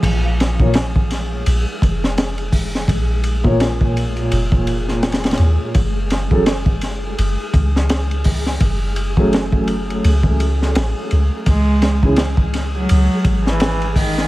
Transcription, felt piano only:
X:1
M:4/4
L:1/16
Q:"Swing 16ths" 1/4=84
K:Bbm
V:1 name="Felt piano"
z3 [B,,B,Fd] z12 | z3 [B,,B,Fd]12- [B,,B,Fd] | z3 [G,DA=A] z12 | z3 [G,=A,D_A]12- [G,=A,D_A] |
z3 [D,D_FA] z12 |]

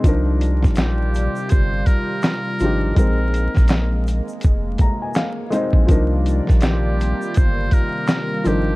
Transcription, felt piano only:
X:1
M:4/4
L:1/16
Q:"Swing 16ths" 1/4=82
K:Cm
V:1 name="Felt piano"
[F,DEB]6 z8 [F,DEG]2 | [A,CEB]6 z4 b a f2 [A,CEce]2 | [F,DEB]6 z8 [F,DEB]2 |]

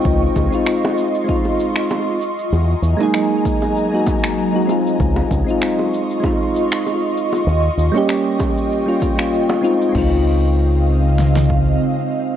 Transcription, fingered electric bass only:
X:1
M:4/4
L:1/8
Q:"Swing 16ths" 1/4=97
K:Dblyd
V:1 name="Fingered electric bass" clef=bass
D,, D,, z6 | =E,, E,, z6 | D,, D,, z6 | E,, E,, z6 |
D,,6 z2 |]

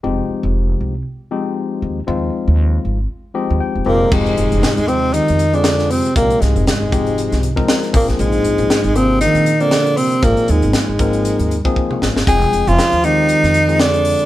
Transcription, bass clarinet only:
X:1
M:4/4
L:1/16
Q:"Swing 16ths" 1/4=118
K:Fdor
V:1 name="Bass clarinet" clef=bass
z16 | z12 z2 B,,2 | A,,6 C,2 E,3 D,3 C,2 | B,,2 A,,2 A,,8 z2 B,,2 |
A,,6 C,2 E,3 D,3 C,2 | B,,2 A,,2 A,,8 z4 | A,3 F,3 E,6 D,4 |]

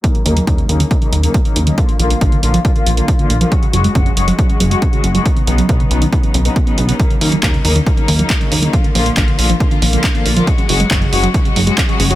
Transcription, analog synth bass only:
X:1
M:4/4
L:1/8
Q:1/4=138
K:Ebm
V:1 name="Analog synth bass" clef=bass
z E,, E,, E,, z E,, z E,, | z B,,, B,,, B,,, z B,,, z B,,, | z G,,, G,,, G,,, z G,,, z G,,, | z =B,,, B,,, B,,, z B,,, z B,,, |
z E,, E,, E,, z E,, z E,, | z B,,, B,,, B,,, z B,,, z B,,, | z G,,, G,,, G,,, z G,,, z G,,, |]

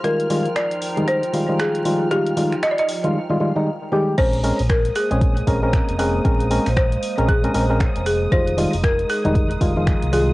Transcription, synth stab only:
X:1
M:4/4
L:1/16
Q:"Swing 16ths" 1/4=116
K:Bbm
V:1 name="Synth stab" clef=bass
[E,=G,A,F]2 [E,G,A,F] z4 [E,G,A,E]2 z [E,G,A,F] [E,G,A,F]3 [E,G,A,F]2 | [E,=G,A,F]2 [E,G,A,F] z4 [E,G,A,F] z [E,G,A,F] [E,G,A,F] [E,G,A,E] z2 [E,G,A,=G]2 | [A,CDB]2 [A,CDB] z4 [A,CDA]2 z [A,CDB] [A,CDB]3 [A,CDB]2 | [A,CDB]2 [A,CDB] z4 [A,CDB] z [A,CDB] [A,CDB] [A,CDB] z4 |
[E,=G,A,F]2 [E,G,A,F] z4 [E,G,A,E]2 z [E,G,A,F] [E,F,A,F]3 [E,G,A,F]2 |]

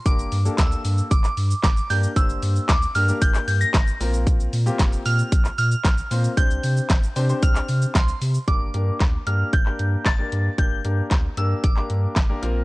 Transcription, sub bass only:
X:1
M:4/4
L:1/16
Q:1/4=114
K:Gdor
V:1 name="Sub bass" clef=bass
G,,, G,,, G,,2 D,,2 G,,2 G,,,2 G,,2 G,,,2 G,,2 | G,,, G,,, G,,2 D,,2 G,,2 G,,,2 G,,2 G,,,2 B,,,2- | B,,, B,,, B,,2 F,,,2 B,,2 B,,,2 B,,2 B,,,2 B,,2 | C,, C,, C,2 G,,,2 C,2 C,,2 C,2 C,,2 C,2 |
G,,, G,,, G,,2 D,,2 G,,2 G,,,2 G,,2 G,,,2 G,,2 | G,,, G,,, G,,2 D,,2 G,,2 G,,,2 G,,2 G,,,2 B,,,2 |]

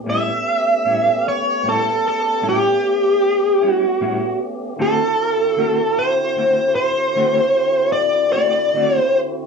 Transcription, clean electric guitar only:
X:1
M:12/8
L:1/8
Q:3/8=51
K:D
V:1 name="Clean electric guitar"
[A,,G,CE] z [A,,G,CE] z [A,,G,CE] z [A,,G,CE] z2 [G,CE] [A,,G,CE] z | [D,A,=CF] z [D,A,CF] z [D,A,CF] z [D,A,CF] z2 [A,CF] [D,A,CF] z |]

